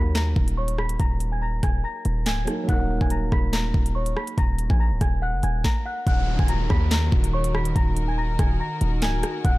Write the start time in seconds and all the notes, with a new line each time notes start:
Already playing: D#2 F#3 A#3 D#4 A#4 B5 B6
0.15 A#5 A#6, snare, clap, closed hi-hat
0.36 D#1, kick
0.48 closed hi-hat
0.57 C#5 C#6
0.68 closed hi-hat
0.78 B5 B6, cross-stick
0.89 closed hi-hat
1.00 D#1 A#5 A#6, kick, closed hi-hat
1.20 closed hi-hat
1.32 G#5 G#6
1.42 A#5 A#6
1.63 D#1 G#5 G#6, kick, cross-stick, closed hi-hat
1.84 A#5 A#6
2.05 D#1, closed hi-hat
2.26 C#1 G#5 G#6, snare, clap, closed hi-hat
2.38 D#1
2.45 F#3 A#3 D#4, cross-stick, closed hi-hat
2.50 A#4
2.64 F#3 A#3
2.69 D#1 D#4 F#5 F#6, kick, closed hi-hat
2.74 A#4
3.01 D#1 G#5 G#6, kick
3.10 A#5 A#6, closed hi-hat
3.32 D#1 B5 B6, kick, cross-stick
3.53 A#5 A#6, snare, clap, closed hi-hat
3.74 D#1, kick
3.86 closed hi-hat
3.95 C#5 C#6
4.06 closed hi-hat
4.16 B5 B6, cross-stick
4.27 closed hi-hat
4.38 D#1 A#5 A#6, kick, closed hi-hat
4.59 closed hi-hat
4.70 A#1 G#5 G#6, kick
4.80 A#5 A#6
4.91 C#1
5.01 D#1 G#5 G#6, kick, cross-stick, closed hi-hat
5.22 F#5 F#6
5.33 F#1
5.43 D#1 G#5 G#6, closed hi-hat
5.64 A#5 A#6, kick, snare
5.86 F#5 F#6
6.07 D#1 D#3 D#4 F#4 A#4 F#5 F#6, kick, closed hi-hat, downlifter
6.39 D#1 G#5 G#6, kick
6.48 A#5 A#6, closed hi-hat
6.70 D#2 B5 B6, kick, cross-stick
6.91 A#5 A#6, snare, clap, closed hi-hat
7.12 D#1, kick
7.24 closed hi-hat
7.33 C#5 C#6
7.44 closed hi-hat
7.55 B5 B6, cross-stick
7.65 closed hi-hat
7.76 D#1 A#5 A#6, kick, closed hi-hat
7.97 closed hi-hat
8.08 G#5 G#6
8.18 A#5 A#6
8.39 D#1 G#5 G#6, kick, cross-stick, closed hi-hat
8.60 A#5 A#6
8.81 D#1, closed hi-hat
9.02 C#1 G#5 G#6, snare, clap, closed hi-hat
9.14 D#1
9.23 cross-stick, closed hi-hat
9.44 D#1 D#3 F#5 F#6, kick, closed hi-hat